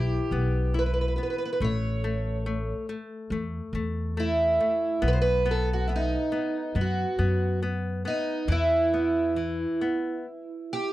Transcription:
0.00 0.16 B1 medium
0.00 1.57 E3 soft
0.00 0.31 E4 soft
0.00 0.78 G4 medium
0.31 1.16 B1 medium
0.31 0.74 B3 soft
0.74 1.17 E4 soft
0.79 0.85 B4 medium
0.86 0.92 B4 soft
0.94 0.99 B4 medium
1.01 1.07 B4 soft
1.08 1.14 B4 soft
1.16 1.60 B3 soft
1.16 1.22 B4 soft
1.23 1.29 B4 soft
1.30 1.36 B4 soft
1.38 1.44 B4 soft
1.45 1.51 B4 medium
1.53 1.58 B4 medium
1.60 2.71 A1 medium
1.60 2.03 A3 medium
1.64 2.86 C#5 medium
2.04 2.45 A3 soft
2.46 2.87 A3 soft
2.89 3.30 A3 soft
3.30 3.58 E2 medium
3.30 3.73 A3 soft
3.73 4.57 E2 medium
3.73 4.16 A3 soft
4.17 4.59 A3 soft
4.17 5.07 E4 medium
4.60 5.02 A3 soft
5.02 6.15 B1 medium
5.02 5.44 B3 medium
5.08 5.12 B4 medium
5.13 5.18 C5 medium
5.22 5.49 B4 medium
5.46 5.88 B3 medium
5.51 5.69 A4 medium
5.73 5.86 F#4 medium
5.87 6.31 B3 soft
5.87 5.92 E4 medium
5.96 6.81 D#4 medium
6.32 6.74 B3 soft
6.75 7.03 F#2 medium
6.75 7.17 B3 medium
6.81 7.60 F#4 medium
7.19 8.03 F#2 medium
7.19 7.60 B3 soft
7.63 8.04 B3 soft
8.05 8.47 B3 soft
8.05 8.51 D#4 medium
8.48 9.64 E2 medium
8.48 9.35 E3 medium
8.52 10.93 E4 medium
8.94 9.36 B3 medium
9.36 9.80 E3 soft
9.81 10.25 B3 soft
10.73 10.93 G4 medium

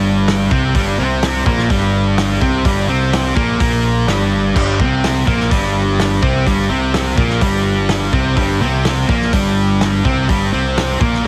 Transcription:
0.00 0.47 G1 medium
0.00 0.50 G2 medium
0.00 0.51 G3 loud
0.28 snare loud
0.28 open hi-hat soft
0.51 0.73 C2 loud
0.51 0.74 C3 loud
0.51 0.74 C4 loud
0.51 kick medium
0.75 0.97 G1 medium
0.75 0.98 G2 loud
0.75 0.98 G3 loud
0.75 kick loud
0.75 open hi-hat medium
0.98 1.43 C2 medium
0.98 1.45 C3 loud
0.98 1.46 C4 loud
1.23 snare loud
1.23 open hi-hat medium
1.45 1.68 A#1 medium
1.45 1.69 A#2 loud
1.45 1.69 A#3 loud
1.45 kick loud
1.59 snare soft
1.70 2.37 G1 loud
1.70 2.40 G2 medium
1.70 2.41 G3 loud
1.70 kick loud
1.70 open hi-hat medium
2.18 snare loud
2.18 open hi-hat medium
2.41 2.63 C2 medium
2.41 2.64 C3 medium
2.41 2.65 C4 loud
2.41 kick medium
2.65 2.87 G1 medium
2.65 2.88 G2 loud
2.65 2.88 G3 loud
2.65 kick loud
2.65 open hi-hat medium
2.87 3.32 C2 medium
2.87 3.36 C3 medium
2.87 3.36 C4 loud
3.13 snare loud
3.13 open hi-hat medium
3.36 3.58 A#1 medium
3.36 3.59 A#2 medium
3.36 3.60 A#3 loud
3.36 kick loud
3.60 4.05 A#1 medium
3.60 4.07 A#2 medium
3.60 4.07 A#3 loud
3.60 kick loud
3.60 open hi-hat medium
4.07 4.52 G1 medium
4.07 4.54 G2 loud
4.07 4.55 G3 loud
4.07 snare medium
4.07 open hi-hat soft
4.55 4.78 G1 medium
4.55 4.78 G2 medium
4.55 4.79 G3 loud
4.55 kick loud
4.55 crash loud
4.79 5.24 C2 medium
4.79 5.26 C3 medium
4.79 5.26 C4 loud
4.79 kick loud
5.04 snare loud
5.04 open hi-hat medium
5.26 5.49 A#1 medium
5.26 5.50 A#2 medium
5.26 5.50 A#3 loud
5.26 kick loud
5.40 snare soft
5.50 6.19 G1 loud
5.50 6.21 G2 medium
5.50 6.22 G3 medium
5.50 kick loud
5.50 open hi-hat medium
5.99 snare medium
5.99 open hi-hat medium
6.21 6.45 C2 loud
6.21 6.45 C3 medium
6.21 6.45 C4 loud
6.21 kick loud
6.46 6.69 G1 loud
6.46 6.69 G2 loud
6.46 6.70 G3 medium
6.46 kick loud
6.46 open hi-hat medium
6.70 7.14 C2 medium
6.70 7.16 C3 medium
6.70 7.17 C4 loud
6.94 snare loud
6.94 open hi-hat medium
7.17 7.40 A#1 medium
7.17 7.40 A#2 medium
7.17 7.41 A#3 loud
7.17 kick loud
7.30 snare soft
7.41 8.09 G1 medium
7.41 8.12 G2 medium
7.41 8.13 G3 loud
7.41 kick loud
7.41 open hi-hat medium
7.89 snare loud
7.89 open hi-hat medium
8.12 8.35 C2 loud
8.12 8.36 C3 medium
8.12 8.36 C4 medium
8.12 kick medium
8.36 8.59 G1 medium
8.36 8.59 G2 loud
8.36 8.60 G3 loud
8.36 kick loud
8.36 open hi-hat medium
8.60 9.05 C2 medium
8.60 9.07 C3 medium
8.60 9.08 C4 loud
8.85 snare loud
8.85 open hi-hat medium
9.08 9.31 A#1 loud
9.08 9.31 A#2 loud
9.08 9.32 A#3 loud
9.08 kick loud
9.22 snare soft
9.32 10.00 G1 medium
9.32 10.03 G2 loud
9.32 10.04 G3 loud
9.32 kick loud
9.32 open hi-hat medium
9.81 snare medium
9.81 open hi-hat soft
10.04 10.27 C2 medium
10.04 10.27 C3 medium
10.04 10.28 C4 loud
10.04 kick medium
10.28 10.51 G1 medium
10.28 10.51 G2 medium
10.28 10.52 G3 loud
10.28 kick loud
10.28 open hi-hat medium
10.52 10.97 C2 medium
10.52 10.99 C3 medium
10.52 11.00 C4 loud
10.78 snare loud
10.78 open hi-hat medium
11.00 11.23 A#1 medium
11.00 11.23 A#2 medium
11.00 11.24 A#3 loud
11.00 kick loud
11.14 snare soft
11.24 11.27 A#2 medium

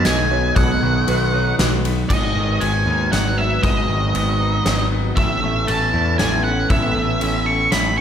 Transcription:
0.00 0.32 B2 medium
0.00 0.57 D#3 medium
0.00 0.30 B3 medium
0.00 2.08 B3 medium
0.00 1.08 D#4 medium
0.00 2.08 F#4 medium
0.00 2.08 D#5 medium
0.05 0.51 B1 medium
0.05 1.34 F#3 medium
0.05 0.31 D#5 medium
0.05 0.55 G#5 medium
0.05 snare medium
0.05 ride medium
0.31 1.07 B3 medium
0.31 0.82 C#5 medium
0.56 0.79 B1 medium
0.56 1.85 B2 medium
0.56 1.55 F#5 medium
0.56 kick medium
0.56 ride soft
0.83 1.05 B1 medium
0.83 2.10 D#3 medium
1.08 1.52 B1 medium
1.08 1.84 B3 medium
1.08 1.34 B4 medium
1.08 ride medium
1.33 2.10 D#4 medium
1.33 1.59 C#5 medium
1.59 2.04 B1 medium
1.59 2.11 F#3 medium
1.59 2.10 B4 medium
1.59 snare medium
1.59 ride medium
1.85 2.11 B3 medium
1.85 ride medium
2.09 2.33 G#1 medium
2.09 3.39 G#2 medium
2.09 5.14 G#3 medium
2.09 5.14 F#4 medium
2.09 5.13 B4 medium
2.09 2.62 D#5 medium
2.09 kick medium
2.09 crash medium
2.36 2.58 G#1 medium
2.36 3.64 D#3 medium
2.60 2.84 G#1 medium
2.60 3.38 B3 soft
2.60 3.12 G#5 medium
2.60 ride soft
2.86 3.09 D#2 medium
2.86 4.15 D#4 medium
3.12 3.57 G#1 medium
3.12 4.41 F#3 medium
3.12 3.39 F#5 medium
3.12 snare medium
3.12 ride medium
3.38 4.15 B3 soft
3.38 3.62 E5 medium
3.63 3.86 G#1 medium
3.63 4.92 G#2 medium
3.63 4.87 D#5 medium
3.63 kick medium
3.63 ride soft
3.89 4.11 G#1 medium
3.89 5.17 D#3 medium
4.15 4.59 G#1 medium
4.15 4.92 B3 medium
4.15 ride medium
4.41 5.17 D#4 medium
4.66 5.11 G#1 medium
4.66 5.17 F#3 medium
4.66 snare medium
4.66 ride soft
4.92 5.20 B3 medium
5.16 5.39 A1 medium
5.16 6.45 A2 medium
5.16 8.01 B3 medium
5.16 8.01 C#4 medium
5.16 8.01 A4 medium
5.16 5.69 E5 medium
5.16 kick medium
5.16 ride soft
5.43 5.65 A1 medium
5.43 6.18 A3 medium
5.67 5.91 A1 medium
5.67 6.43 C#4 medium
5.67 6.18 A5 medium
5.67 ride soft
5.93 6.16 E2 medium
5.93 7.46 E4 medium
6.18 6.64 A1 medium
6.18 6.94 A3 medium
6.18 6.44 G#5 medium
6.18 snare medium
6.18 ride soft
6.44 7.19 C#4 soft
6.44 6.68 F#5 medium
6.70 6.92 A1 medium
6.70 7.97 A2 medium
6.70 7.49 E5 medium
6.70 kick medium
6.70 ride soft
6.95 7.18 A1 medium
6.95 7.71 A3 medium
7.20 7.66 A1 medium
7.20 7.96 C#4 medium
7.20 ride soft
7.46 8.01 E4 soft
7.46 7.71 C#6 medium
7.72 8.01 A1 medium
7.72 8.01 A3 medium
7.72 7.97 B5 medium
7.72 snare medium
7.72 ride medium
7.97 8.01 C#4 soft
7.97 8.01 C#6 medium

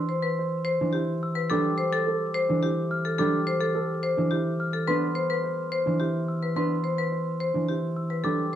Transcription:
0.00 0.80 E3 medium
0.09 0.28 C5 medium
0.22 0.42 B4 medium
0.39 0.57 C5 soft
0.65 0.84 C5 medium
0.81 1.53 E3 medium
0.81 0.99 D4 medium
0.93 1.13 E4 medium
0.93 1.12 G4 medium
1.23 1.41 E6 medium
1.35 1.55 B4 medium
1.50 3.18 G3 medium
1.50 1.69 D4 medium
1.50 1.69 A4 medium
1.50 1.69 D6 medium
1.78 1.97 C5 medium
1.93 2.11 A4 medium
2.07 2.25 A4 medium
2.34 2.53 C5 medium
2.49 4.17 E3 medium
2.49 2.67 D4 medium
2.63 2.81 E4 medium
2.63 2.81 G4 medium
2.91 3.09 F6 medium
3.05 3.17 A4 medium
3.18 7.10 G3 medium
3.18 3.37 D4 medium
3.18 3.37 A4 medium
3.18 3.38 D6 medium
3.47 3.65 C5 medium
3.61 3.79 A4 medium
3.75 3.93 A4 medium
4.03 4.22 C5 medium
4.17 4.90 E3 medium
4.17 4.36 D4 medium
4.31 4.50 E4 medium
4.31 4.49 G4 medium
4.60 4.78 F6 medium
4.73 4.92 A4 medium
4.88 6.55 B3 medium
4.88 5.06 D4 medium
4.88 5.06 B4 medium
4.88 5.06 C6 medium
5.15 5.34 C5 medium
5.30 5.48 B4 medium
5.44 5.62 C5 medium
5.72 5.90 C5 medium
5.86 7.54 E3 medium
5.86 6.04 D4 soft
6.00 6.18 E4 soft
6.00 6.18 G4 soft
6.28 6.46 E6 soft
6.43 6.55 B4 soft
6.56 8.26 B3 medium
6.56 6.74 D4 medium
6.56 6.74 B4 medium
6.56 6.74 C6 medium
6.84 7.02 C5 soft
6.98 7.16 B4 medium
7.12 7.30 C5 soft
7.40 7.58 C5 medium
7.54 8.27 E3 soft
7.54 7.72 D4 soft
7.68 7.86 E4 soft
7.68 7.86 G4 soft
7.96 8.14 E6 soft
8.10 8.28 B4 soft
8.24 8.55 G3 medium
8.24 8.42 D4 medium
8.24 8.42 A4 medium
8.24 8.42 D6 medium

